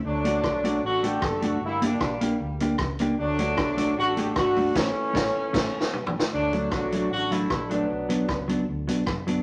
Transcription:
<<
  \new Staff \with { instrumentName = "Clean electric guitar" } { \time 4/4 \key d \major \tempo 4 = 153 r8 <a d' fis'>8 r8 <a d' fis'>8 r8 <a d' fis'>8 r8 <a d' fis'>8 | r8 <bes d' g'>8 r8 <bes d' g'>8 r8 <bes d' g'>8 r8 <bes d' g'>8 | r8 <a d' fis'>8 r8 <a d' fis'>8 r8 <a d' fis'>8 r8 <a d' fis'>8 | <a cis' e'>8 r8 <a cis' e'>8 r8 <a cis' e'>8 r4. |
r8 <fis a d'>8 r8 <fis a d'>8 r8 <fis a d'>8 r8 <fis a d'>8 | r8 <fis b d'>8 r8 <fis b d'>8 r8 <fis b d'>8 r8 <fis b d'>8 | }
  \new Staff \with { instrumentName = "Horn section" } { \time 4/4 \key d \major << { d'2 fis'8 g'8 a'16. g'32 fis'8 | e'8 d'4 r2 r8 | d'2 fis'8 g'8 fis'4 | cis'2. r4 |
d'4 fis'4 fis'8 e'4 d'8~ | d'4. r2 r8 | } \\ { <fis a>2 <a d'>2 | <g bes>8 <g bes>2 r4. | <fis a>2 <a d'>4 <a d'>4 | <e a>2. r4 |
<fis a>4 <a d'>4 <a d'>8 a4 <fis b>8~ | <fis b>4. r2 r8 | } >> }
  \new Staff \with { instrumentName = "Fingered electric bass" } { \clef bass \time 4/4 \key d \major d,4 b,,4 a,,4 fis,,4 | g,,4 bes,,4 d,4 cis,4 | d,4 b,,4 a,,4 gis,,4 | a,,8 r8 a,,8 r8 a,,8 r4. |
d,4 b,,4 a,,4 bes,,4 | b,,4 cis,4 d,8 b,,8 fis,,4 | }
  \new DrumStaff \with { instrumentName = "Drums" } \drummode { \time 4/4 r8 hh8 <bd ss>8 hh8 r8 hh8 <bd ss>8 hh8 | r8 hh8 <bd ss>8 hh8 r8 hh8 <bd ss>8 hh8 | r8 hh8 <bd ss>8 hh8 r8 hh8 <bd ss>8 hho8 | <cymc bd sn>4 <bd sn>4 \tuplet 3/2 { <cymc bd sn>8 r8 sn8 toml8 tomfh8 sn8 } |
r8 hh8 <bd ss>8 hh8 r8 hh8 <bd ss>8 hh8 | r8 hh8 <bd ss>8 hh8 r8 hh8 <bd ss>8 hh8 | }
>>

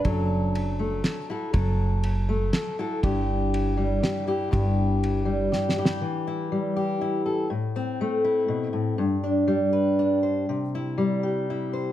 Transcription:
<<
  \new Staff \with { instrumentName = "Steel-string acoustic guitar" } { \time 3/4 \key e \minor \tempo 4 = 121 << { a'2 a'8 <e' fis' a'>8 | a'2 a'8 <e' fis' a'>8 | g'2 g'8 <e' g'>8 | g'2 g'8 <e' g'>8~ |
<e' g'>8 e'4 g'8 e'8 a'8 | r8 c'4 e'4. | r8 d'4 b'8 d'8 c''8 | r8 e'4 g'8 e'8 c''8 | } \\ { fis4. a4. | fis4. a4. | g,4. g4. | g,4. g4. |
e4 g2 | a,4 a4 b,8 a,8 | g,4 g2 | c4 g2 | } >> }
  \new Staff \with { instrumentName = "Upright bass" } { \clef bass \time 3/4 \key e \minor fis,,2 r4 | fis,,2 r4 | g,,2 r4 | g,,2 r4 |
r2. | r2. | r2. | r2. | }
  \new DrumStaff \with { instrumentName = "Drums" } \drummode { \time 3/4 <bd cymr>4 cymr4 <cymr sn>4 | <bd cymr>4 cymr4 <cymr sn>4 | <bd cymr>4 cymr4 <cymr sn>4 | <bd cymr>4 cymr4 \tuplet 3/2 { sn8 sn8 sn8 } |
r4 r4 r4 | r4 r4 r4 | r4 r4 r4 | r4 r4 r4 | }
>>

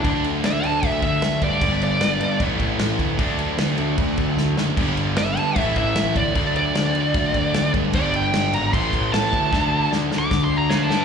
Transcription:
<<
  \new Staff \with { instrumentName = "Lead electric guitar" } { \time 4/4 \key d \major \tempo 4 = 152 << { d'8 r8 e''8 a''8 e''8 e''4 d''8~ | d''8 d''4. r2 | r1 | r4 e''8 a''8 e''8 e''4 d''8~ |
d''8 d''2. r8 | d''8 g''4 bes''8 c'''4 a''4~ | a''4 \tuplet 3/2 { r4 d'''8~ d'''8 c'''8 bes''8 f''8 a''4 } | } \\ { r1 | r1 | r1 | r1 |
r1 | r1 | r2. cis''4 | } >> }
  \new Staff \with { instrumentName = "Overdriven electric guitar" } { \time 4/4 \key d \major <d fis a d'>4. <d fis a d'>2~ <d fis a d'>8 | <g, d g b d'>4. <g, d g b d'>8 <a, e a cis' e'>4. <a, e a cis' e'>8 | <d fis a d'>4. <d fis a d'>2~ <d fis a d'>8 | <g, d g b d'>4. <g, d g b d'>8 <a, e a cis' e'>4. <a, e a cis' e'>8 |
<d fis a d'>4. <d fis a d'>2~ <d fis a d'>8 | <g, d g b d'>4. <g, d g b d'>8 <a, e a cis' e'>4. <a, e a cis' e'>8 | <d a d' fis'>4. <d a d' fis'>2~ <d a d' fis'>8 | }
  \new Staff \with { instrumentName = "Distorted electric guitar" } { \clef bass \time 4/4 \key d \major <d a d'>2.~ <d a d'>8 <d a d'>8 | <g, d g>2 <a, e a>2 | <d a d'>2.~ <d a d'>8 <d a d'>8 | <g, d g>2 <a, e a>2 |
<d a d'>2.~ <d a d'>8 <d a d'>8 | <g, d g>2 <a, e a>2 | <d a d'>2.~ <d a d'>8 <d a d'>8 | }
  \new Staff \with { instrumentName = "Overdriven electric guitar" } { \clef bass \time 4/4 \key d \major <d a d'>1 | <g, d g>2 <a, e a>2 | <d a d'>1 | <g, d g>2 <a, e a>2 |
<d a d'>1 | <g, d g>2 <a, e a>2 | <d a d'>1 | }
  \new Staff \with { instrumentName = "Picked electric bass" } { \clef bass \time 4/4 \key d \major d,4 d,8 d,8 d,8 d,8 d,8 g,8 | g,,4 g,,8 g,8 a,,8 a,,8 a,,8 d,8 | d,4 d,8 d,8 d,8 d,8 d,8 fis,,8 | g,,4 g,,8 g,8 a,,8 a,,8 a,,8 d,8 |
d,4 d,8 d,8 d,8 d,8 d,8 g,8 | g,,4 g,,8 aes,,8 a,,8 a,,8 a,,8 d,8 | d,4 d,8 d,8 d,8 d,8 d,8 g,8 | }
  \new DrumStaff \with { instrumentName = "Drums" } \drummode { \time 4/4 <cymc bd>8 cymc8 <cymc sn>8 cymc8 <cymc bd>8 <cymc bd>8 <cymc sn>8 <cymc bd>8 | <cymc bd>8 cymc8 <cymc sn>8 cymc8 <cymc bd>8 <cymc bd>8 <cymc sn>8 <cymc bd>8 | <cymc bd>8 cymc8 <cymc sn>8 cymc8 <cymc bd>8 <cymc bd>8 sn8 sn8 | <cymc bd>8 cymc8 <cymc sn>8 cymc8 <cymc bd>8 <cymc bd>8 <cymc sn>8 <cymc bd>8 |
<cymc bd>8 cymc8 <cymc sn>8 cymc8 <cymc bd>8 <cymc bd>8 <cymc sn>8 <cymc bd>8 | <cymc bd>8 cymc8 <cymc sn>8 cymc8 <cymc bd>8 <cymc bd>8 <cymc sn>8 <cymc bd>8 | <bd sn>4 sn8 sn8 <bd sn>4 sn8 sn8 | }
>>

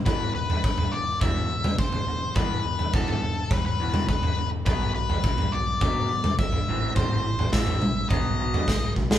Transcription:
<<
  \new Staff \with { instrumentName = "Lead electric guitar" } { \time 4/4 \key b \phrygian \tempo 4 = 104 b'8 b'4 d''8 e''4 c''4 | b'4 a'16 a'8. b'16 b'8. b'8. r16 | b'8 b'4 d''4. e''4 | c''4 e''4 dis''4. r8 | }
  \new Staff \with { instrumentName = "Clean electric guitar" } { \clef bass \time 4/4 \key b \phrygian <e, b, e>8 <e, b,>8 <e, b,>8 <e, b,>8 <e, b, e>8 <e, b,>8 <e, b,>8 <e, b,>8 | <e, b, e>8 <e, b,>8 <e, b, e>8 <e, b,>8 <e, b,>8 <e, b, e>8 <e, b,>8 <e, b,>8 | <b, fis b>8 <b, fis>8 <b, fis>8 <b, fis>8 <b, fis b>8 <b, fis>8 <b, fis>8 <a, e c'>8 | <a, e c'>8 <a, e>8 <a, e c'>8 <a, e>8 <b, fis b>8 <b, fis b>8 <b, fis>8 <b, fis>8 | }
  \new Staff \with { instrumentName = "Picked electric bass" } { \clef bass \time 4/4 \key b \phrygian e,,8 e,,8 e,,8 e,,8 e,4 e,,8 e,,8 | e,,8 e,,8 e,,8 e,,8 e,4 e,,8 e,,8 | b,,8 b,,8 b,,8 b,,8 b,4 b,,8 a,,8 | a,,8 a,,8 a,,8 ais,,8 b,,4 b,,8 b,,8 | }
  \new DrumStaff \with { instrumentName = "Drums" } \drummode { \time 4/4 <bd tomfh>8. tomfh16 bd16 tomfh8. <bd tomfh>8. <tomfh toml>16 bd16 tomfh8. | <bd tomfh>8. tomfh16 bd16 tomfh8. <bd tomfh>8. <tomfh toml>16 bd16 tomfh8. | <bd tomfh>8. tomfh16 bd16 tomfh8. <bd tomfh>8. <tomfh toml>16 bd16 tomfh8. | <bd tomfh>8. tomfh16 <bd sn>16 tomfh16 toml8 <bd tomfh>8. tomfh16 <bd sn>8 bd16 sn16 | }
>>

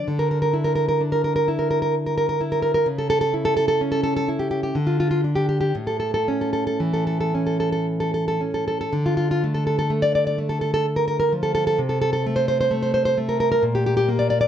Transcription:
\new Staff \with { instrumentName = "Nylon-string guitar" } { \time 3/4 \key d \minor \tempo 4 = 63 << { r32 bes'32 bes'32 bes'32 r32 bes'32 bes'32 bes'32 r32 bes'32 bes'32 bes'32 r32 bes'32 bes'32 bes'32 r32 bes'32 bes'32 bes'32 r32 bes'32 bes'32 bes'32 | r32 a'32 a'32 a'32 r32 a'32 a'32 a'32 r32 a'32 a'32 a'32 r32 g'32 g'32 g'32 r32 f'32 f'32 f'32 r32 g'32 g'32 g'32 | r32 a'32 a'32 a'32 r32 a'32 a'32 a'32 r32 a'32 a'32 a'32 r32 a'32 a'32 a'32 r32 a'32 a'32 a'32 r32 a'32 a'32 a'32 | r32 f'32 f'32 f'32 r32 a'32 a'32 a'32 r32 d''32 d''32 d''32 r32 a'32 a'32 a'32 r32 bes'32 bes'32 bes'32 r32 a'32 a'32 a'32 |
r32 a'32 a'32 a'32 r32 c''32 c''32 c''32 r32 c''32 c''32 c''32 r32 bes'32 bes'32 bes'32 r32 g'32 g'32 g'32 r32 d''32 d''32 d''32 | } \\ { d8 e'8 d'8 e'4 e'8 | cis8 e'8 cis'8 e'8 d8 d'8 | a,8 cis'8 e8 cis'4 cis'8 | d8 a8 a8 a4 f8 |
c8 a8 a8 a8 bes,8 bes8 | } >> }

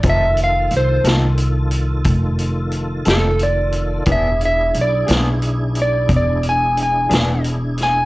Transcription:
<<
  \new Staff \with { instrumentName = "Electric slide guitar" } { \time 12/8 \key f \lydian \tempo 4. = 59 e''8 f''8 c''8 r2. a'8 d''4 | e''8 e''8 d''8 r4 d''8 d''8 gis''8 gis''4 r8 gis''8 | }
  \new Staff \with { instrumentName = "Tonewheel organ" } { \time 12/8 \key f \lydian <ees f' a'>1. | <d' e' gis'>1. | }
  \new Staff \with { instrumentName = "Clean electric guitar" } { \time 12/8 \key f \lydian <f c' ees' a'>8 r4 <f c' ees' a'>8 r2 r8 <f c' ees' a'>8 r4 | <e b d' gis'>8 r4 <e b d' gis'>8 r2 r8 <e b d' gis'>8 r4 | }
  \new Staff \with { instrumentName = "Upright bass" } { \clef bass \time 12/8 \key f \lydian f,,4 c,8 c,4. f,,4. f,,4. | e,,4 b,,8 b,,4. e,,4. e,,4. | }
  \new DrumStaff \with { instrumentName = "Drums" } \drummode { \time 12/8 <hh bd>8 hh8 hh8 <hh sn>8 hh8 hh8 <hh bd>8 hh8 hh8 <hh sn>8 hh8 hh8 | <hh bd>8 hh8 hh8 <hh sn>8 hh8 hh8 <hh bd>8 hh8 hh8 <hh sn>8 hh8 <hh sn>8 | }
>>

